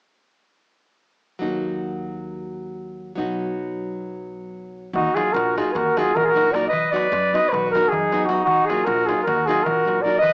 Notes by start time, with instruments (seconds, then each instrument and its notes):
1.39 upright bass D#2, nylon-string guitar F#3 A#3 D#4 F#4
3.15 upright bass B1, nylon-string guitar F#3 B3 D#4 F#4
4.93 upright bass D#2, trumpet D#4, flugelhorn F#4, darbuka dum
5.15 nylon-string guitar F#3 A#3 D#4 F#4, trumpet F4, flugelhorn G#4, darbuka tek
5.33 upright bass A#1, trumpet F#4, flugelhorn A#4, darbuka tek
5.56 nylon-string guitar F#3 A#3 D#4 F#4, trumpet F4, flugelhorn G#4, darbuka tek
5.67 darbuka tek
5.72 upright bass D#2, trumpet F#4 G#4, flugelhorn B4
5.76 flugelhorn A#4, darbuka tek, darbuka dum
5.97 nylon-string guitar F#3 A#3 D#4 F#4, trumpet F4, flugelhorn G#4, darbuka tek
6.15 upright bass A#1, trumpet F#4, flugelhorn A#4, darbuka dum
6.24 trumpet F4, flugelhorn G#4 A#4
6.31 nylon-string guitar F#3 A#3, trumpet F#4
6.36 nylon-string guitar D#4 F#4, darbuka tek
6.52 nylon-string guitar F#3 A#3 D#4 F#4, trumpet A#4, flugelhorn D5, darbuka tek
6.65 flugelhorn D#5, darbuka tek
6.70 upright bass B1, trumpet B4, darbuka dum
6.91 nylon-string guitar F#3 B3 D#4 F#4, trumpet B4, flugelhorn D5
6.96 darbuka tek
7.12 upright bass F#2, darbuka tek
7.32 nylon-string guitar F#3 B3 D#4 F#4, trumpet B4, flugelhorn D#5, darbuka tek
7.45 darbuka tek
7.50 upright bass B1, trumpet F#4, flugelhorn B4
7.54 darbuka tek, darbuka dum
7.72 nylon-string guitar F#3 B3, trumpet F#4, flugelhorn A#4, darbuka tek
7.76 nylon-string guitar D#4 F#4
7.89 flugelhorn G#4, darbuka dum
7.93 upright bass F#2, trumpet D#4
8.12 nylon-string guitar F#3 B3 D#4 F#4, darbuka tek
8.25 nylon-string guitar F#3 B3, flugelhorn F#4, darbuka tek
8.30 nylon-string guitar D#4 F#4, trumpet D#4
8.38 darbuka tek
8.44 upright bass D#2, flugelhorn F#4, darbuka dum
8.49 trumpet D#4
8.65 nylon-string guitar F#3, flugelhorn G#4
8.70 nylon-string guitar A#3 D#4 F#4, trumpet F4, darbuka tek
8.85 upright bass A#1, trumpet F#4, flugelhorn A#4, darbuka tek
9.06 nylon-string guitar F#3 A#3 D#4, trumpet F4, flugelhorn G#4, darbuka tek
9.11 nylon-string guitar F#4
9.18 darbuka tek
9.23 flugelhorn A#4
9.27 upright bass D#2, trumpet F#4, darbuka tek, darbuka dum
9.46 nylon-string guitar F#3 A#3 D#4 F#4, trumpet F4, flugelhorn G#4
9.51 darbuka tek
9.64 upright bass A#1, trumpet F#4, flugelhorn A#4, darbuka dum
9.85 nylon-string guitar F#3 A#3 D#4 F#4, darbuka tek
10.01 nylon-string guitar F#3 A#3, trumpet A#4, flugelhorn D5
10.06 nylon-string guitar D#4 F#4
10.15 darbuka tek
10.19 upright bass B1, trumpet B4, flugelhorn D#5, darbuka dum